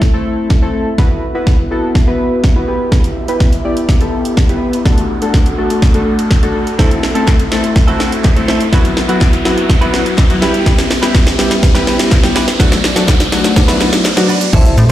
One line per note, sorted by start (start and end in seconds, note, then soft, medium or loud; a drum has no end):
0.00 0.96 C4 medium
0.00 4.81 E4 medium
0.00 0.96 A4 medium
0.00 2.64 E5 medium
0.00 kick loud
0.00 snare medium
0.00 riser medium
0.13 0.49 A3 medium
0.13 0.49 C4 medium
0.13 0.49 E4 medium
0.13 0.49 A4 medium
0.50 kick loud
0.50 snare medium
0.62 0.89 A3 medium
0.62 0.89 C4 medium
0.62 0.89 E4 medium
0.62 0.89 A4 loud
0.98 1.25 B3 medium
0.98 4.82 B3 medium
0.98 1.25 E4 medium
0.98 2.66 F#4 medium
0.98 1.25 F#4 medium
0.98 1.25 B4 loud
0.98 kick loud
0.98 snare medium
1.34 1.61 B3 medium
1.34 1.61 E4 medium
1.34 1.61 F#4 medium
1.34 1.61 B4 medium
1.47 kick loud
1.47 snare medium
1.71 1.97 B3 medium
1.71 1.98 E4 medium
1.71 1.98 F#4 medium
1.71 1.98 A4 loud
1.95 kick loud
1.95 snare medium
2.07 2.43 B3 medium
2.07 2.43 E4 medium
2.07 2.43 F#4 medium
2.07 2.43 B4 loud
2.44 kick loud
2.44 snare medium
2.56 2.67 B3 medium
2.56 2.67 E4 medium
2.56 2.68 F#4 medium
2.56 2.67 B4 loud
2.68 3.16 B3 medium
2.68 3.16 E4 medium
2.68 4.83 G4 medium
2.68 3.16 G4 medium
2.68 3.16 B4 medium
2.68 4.83 E5 medium
2.92 kick loud
2.92 snare medium
3.04 closed hi-hat medium
3.28 3.55 B3 medium
3.28 3.55 E4 medium
3.28 3.55 G4 medium
3.28 3.55 B4 medium
3.28 closed hi-hat medium
3.40 kick loud
3.40 snare medium
3.52 closed hi-hat medium
3.65 3.91 B3 medium
3.65 3.91 E4 medium
3.65 3.91 G4 medium
3.65 3.91 D5 loud
3.77 closed hi-hat medium
3.89 kick loud
3.89 snare medium
4.01 4.36 B3 medium
4.01 4.36 E4 medium
4.01 4.36 G4 medium
4.01 4.36 A4 loud
4.01 closed hi-hat soft
4.25 closed hi-hat medium
4.37 kick loud
4.37 snare medium
4.49 4.76 B3 medium
4.49 4.76 E4 medium
4.49 4.76 G4 medium
4.49 4.76 B4 loud
4.49 closed hi-hat soft
4.73 closed hi-hat medium
4.85 5.12 A3 medium
4.85 5.12 D4 medium
4.85 6.77 D4 medium
4.85 6.77 F#4 medium
4.85 5.12 F#4 medium
4.85 8.69 A4 medium
4.85 5.12 A4 loud
4.85 6.77 F#5 medium
4.85 kick loud
4.85 snare medium
4.98 closed hi-hat medium
5.22 5.48 A3 medium
5.22 5.48 D4 medium
5.22 5.48 F#4 medium
5.22 5.49 A4 medium
5.22 closed hi-hat medium
5.34 kick loud
5.34 snare medium
5.46 closed hi-hat medium
5.58 5.84 A3 medium
5.58 5.85 D4 medium
5.58 5.85 F#4 medium
5.58 5.85 A4 medium
5.70 closed hi-hat medium
5.82 kick loud
5.82 snare medium
5.94 6.30 A3 medium
5.94 6.30 D4 medium
5.94 6.30 F#4 medium
5.94 6.30 A4 loud
5.94 closed hi-hat soft
6.19 closed hi-hat medium
6.31 kick loud
6.31 snare medium
6.43 6.69 A3 medium
6.43 6.69 D4 medium
6.43 6.69 F#4 medium
6.43 6.69 A4 loud
6.43 closed hi-hat medium
6.67 closed hi-hat medium
6.79 7.05 A3 medium
6.79 6.97 C4 medium
6.79 8.71 C4 medium
6.79 7.06 C4 medium
6.79 8.71 E4 medium
6.79 7.06 E4 medium
6.79 6.91 E4 medium
6.79 7.06 A4 loud
6.79 6.90 A4 medium
6.79 12.56 E5 medium
6.79 kick loud
6.79 snare medium
6.91 muted clean electric guitar stroke soft
6.91 closed hi-hat medium
7.03 muted clean electric guitar stroke soft
7.03 snare medium
7.15 7.42 A3 medium
7.15 7.42 C4 medium
7.15 7.26 C4 medium
7.15 7.42 E4 medium
7.15 7.27 E4 medium
7.15 7.27 A4 medium
7.15 7.42 A4 medium
7.15 closed hi-hat medium
7.27 kick loud
7.27 snare medium
7.27 clap medium
7.39 muted clean electric guitar stroke medium
7.39 closed hi-hat medium
7.51 7.78 A3 medium
7.51 7.78 C4 medium
7.51 7.78 E4 medium
7.51 7.78 A4 loud
7.51 snare medium
7.63 muted clean electric guitar stroke soft
7.63 closed hi-hat medium
7.75 muted clean electric guitar stroke soft
7.75 kick loud
7.75 snare medium
7.87 8.23 A3 medium
7.87 8.23 C4 medium
7.87 7.98 C4 medium
7.87 8.23 E4 medium
7.87 7.99 E4 medium
7.87 8.23 F#4 loud
7.87 8.00 A4 medium
7.87 closed hi-hat soft
7.99 8.14 C4 medium
7.99 8.12 E4 medium
7.99 8.11 A4 medium
7.99 snare medium
8.12 muted clean electric guitar stroke medium
8.12 closed hi-hat medium
8.24 kick loud
8.24 snare medium
8.24 clap medium
8.36 8.63 A3 medium
8.36 8.63 C4 medium
8.36 8.63 E4 medium
8.36 8.63 A4 loud
8.36 muted clean electric guitar stroke soft
8.36 closed hi-hat soft
8.48 8.66 C4 loud
8.48 8.60 E4 medium
8.48 8.59 A4 loud
8.48 snare medium
8.60 muted clean electric guitar stroke medium
8.60 closed hi-hat medium
8.72 8.99 F#3 loud
8.72 12.56 B3 medium
8.72 8.99 B3 medium
8.72 8.91 E4 medium
8.72 12.56 E4 medium
8.72 8.99 E4 medium
8.72 10.40 F#4 medium
8.72 8.99 F#4 loud
8.72 8.85 F#4 medium
8.72 8.83 B4 loud
8.72 kick loud
8.72 snare medium
8.85 muted clean electric guitar stroke soft
8.85 closed hi-hat medium
8.97 muted clean electric guitar stroke soft
8.97 snare medium
9.08 9.35 F#3 medium
9.08 9.35 B3 medium
9.08 9.35 E4 medium
9.08 9.20 E4 medium
9.08 9.36 F#4 loud
9.08 9.20 F#4 medium
9.08 9.21 B4 medium
9.08 closed hi-hat medium
9.21 kick loud
9.21 snare medium
9.21 clap medium
9.33 muted clean electric guitar stroke medium
9.33 closed hi-hat medium
9.45 9.72 F#3 medium
9.45 9.72 B3 medium
9.45 9.72 E4 medium
9.45 9.72 F#4 loud
9.45 snare loud
9.57 muted clean electric guitar stroke soft
9.57 closed hi-hat medium
9.69 muted clean electric guitar stroke soft
9.69 kick loud
9.69 snare loud
9.81 10.17 F#3 loud
9.81 10.17 B3 medium
9.81 10.17 E4 medium
9.81 9.92 E4 medium
9.81 10.17 F#4 loud
9.81 9.93 F#4 medium
9.81 9.94 B4 medium
9.81 closed hi-hat soft
9.93 10.08 E4 medium
9.93 10.06 F#4 medium
9.93 10.04 B4 medium
9.93 snare medium
10.06 muted clean electric guitar stroke soft
10.06 closed hi-hat medium
10.18 kick loud
10.18 snare medium
10.18 clap medium
10.30 10.42 F#3 loud
10.30 10.41 B3 medium
10.30 10.41 E4 medium
10.30 10.42 F#4 loud
10.30 muted clean electric guitar stroke soft
10.30 closed hi-hat medium
10.42 10.90 G3 medium
10.42 10.90 B3 medium
10.42 10.60 E4 medium
10.42 10.90 E4 medium
10.42 10.90 G4 loud
10.42 12.58 G4 medium
10.42 10.54 G4 medium
10.42 10.53 B4 medium
10.42 snare loud
10.54 muted clean electric guitar stroke soft
10.54 closed hi-hat medium
10.66 10.84 E4 medium
10.66 10.78 G4 medium
10.66 10.77 B4 loud
10.66 kick loud
10.66 snare medium
10.78 muted clean electric guitar stroke medium
10.78 snare loud
10.78 closed hi-hat medium
10.90 muted clean electric guitar stroke soft
10.90 snare loud
10.90 open hi-hat medium
11.02 11.29 G3 medium
11.02 11.29 B3 medium
11.02 11.29 E4 medium
11.02 11.13 E4 medium
11.02 11.29 G4 loud
11.02 11.14 G4 medium
11.02 11.14 B4 medium
11.02 snare loud
11.02 closed hi-hat medium
11.14 muted clean electric guitar stroke soft
11.14 kick loud
11.14 snare loud
11.14 clap medium
11.26 muted clean electric guitar stroke medium
11.26 snare loud
11.26 closed hi-hat medium
11.39 11.65 G3 loud
11.39 11.65 B3 medium
11.39 11.65 E4 medium
11.39 11.65 G4 loud
11.39 snare loud
11.39 open hi-hat medium
11.51 muted clean electric guitar stroke soft
11.51 snare loud
11.51 closed hi-hat medium
11.63 muted clean electric guitar stroke medium
11.63 kick loud
11.63 snare loud
11.75 12.10 G3 loud
11.75 12.10 B3 medium
11.75 12.10 E4 medium
11.75 11.85 E4 medium
11.75 12.11 G4 loud
11.75 11.86 G4 medium
11.75 11.87 B4 medium
11.75 snare loud
11.75 closed hi-hat soft
11.87 12.01 E4 medium
11.87 11.99 G4 medium
11.87 11.98 B4 medium
11.87 snare loud
11.87 open hi-hat medium
11.99 muted clean electric guitar stroke medium
11.99 snare loud
11.99 closed hi-hat medium
12.11 kick loud
12.11 snare loud
12.11 clap medium
12.23 12.50 G3 medium
12.23 12.50 B3 medium
12.23 12.50 E4 medium
12.23 12.50 G4 loud
12.23 muted clean electric guitar stroke medium
12.23 snare loud
12.23 closed hi-hat medium
12.35 12.53 E4 medium
12.35 12.47 G4 loud
12.35 12.46 B4 medium
12.35 snare loud
12.35 open hi-hat medium
12.47 muted clean electric guitar stroke soft
12.47 snare loud
12.47 closed hi-hat medium
12.59 12.86 F#3 medium
12.59 12.78 A3 medium
12.59 12.86 A3 medium
12.59 13.56 A3 medium
12.59 12.86 D4 medium
12.59 13.55 D4 medium
12.59 12.72 D4 medium
12.59 14.51 F#4 medium
12.59 12.86 F#4 loud
12.59 12.70 F#4 medium
12.59 14.51 D5 medium
12.59 kick loud
12.59 snare loud
12.59 shaker medium
12.72 muted clean electric guitar stroke medium
12.72 snare loud
12.72 closed hi-hat medium
12.72 shaker medium
12.84 muted clean electric guitar stroke soft
12.84 snare loud
12.84 open hi-hat medium
12.84 shaker medium
12.96 13.22 F#3 medium
12.96 13.23 A3 medium
12.96 13.07 A3 medium
12.96 13.23 D4 medium
12.96 13.07 D4 medium
12.96 13.08 F#4 medium
12.96 13.23 F#4 loud
12.96 snare loud
12.96 closed hi-hat medium
12.96 shaker medium
13.08 kick loud
13.08 snare loud
13.08 clap medium
13.08 shaker medium
13.20 muted clean electric guitar stroke soft
13.20 snare loud
13.20 closed hi-hat medium
13.20 shaker medium
13.32 13.55 F#3 loud
13.32 13.57 A3 medium
13.32 13.55 D4 medium
13.32 13.56 F#4 loud
13.32 snare loud
13.32 open hi-hat medium
13.32 shaker medium
13.44 muted clean electric guitar stroke soft
13.44 snare loud
13.44 closed hi-hat medium
13.44 shaker medium
13.56 13.66 F#3 medium
13.56 13.66 B3 medium
13.56 14.52 B3 medium
13.56 14.52 D4 medium
13.56 13.66 D4 medium
13.56 13.66 F#4 loud
13.56 muted clean electric guitar stroke soft
13.56 kick loud
13.56 snare loud
13.56 shaker medium
13.68 14.04 F#3 loud
13.68 14.04 B3 medium
13.68 14.04 D4 medium
13.68 13.79 D4 medium
13.68 14.04 E4 loud
13.68 13.80 F#4 medium
13.68 13.80 B4 medium
13.68 snare loud
13.68 closed hi-hat soft
13.68 shaker soft
13.80 13.94 D4 medium
13.80 13.92 F#4 medium
13.80 13.91 B4 medium
13.80 snare loud
13.80 open hi-hat medium
13.80 shaker soft
13.92 muted clean electric guitar stroke soft
13.92 snare loud
13.92 closed hi-hat medium
13.92 shaker medium
14.05 snare loud
14.05 clap medium
14.05 shaker medium
14.17 14.43 F#3 loud
14.17 14.43 B3 medium
14.17 14.44 D4 medium
14.17 14.44 F#4 loud
14.17 muted clean electric guitar stroke soft
14.17 snare loud
14.17 closed hi-hat medium
14.17 shaker medium
14.29 14.47 D4 medium
14.29 14.41 F#4 medium
14.29 14.40 B4 loud
14.29 open hi-hat medium
14.29 shaker medium
14.41 muted clean electric guitar stroke soft
14.41 closed hi-hat medium
14.41 shaker medium
14.53 14.69 A1 loud
14.53 14.80 C4 medium
14.53 14.75 E4 medium
14.53 14.80 E4 medium
14.53 14.92 A4 medium
14.53 14.80 A4 medium
14.53 14.76 A4 medium
14.53 14.92 C5 medium
14.53 14.80 C5 medium
14.53 14.76 C5 loud
14.53 14.92 E5 medium
14.53 14.80 E5 loud
14.53 14.92 C6 medium
14.53 kick loud
14.53 crash loud
14.53 impact medium
14.53 shaker medium
14.65 closed hi-hat medium
14.65 shaker medium
14.77 14.85 A2 loud
14.77 open hi-hat medium
14.77 shaker medium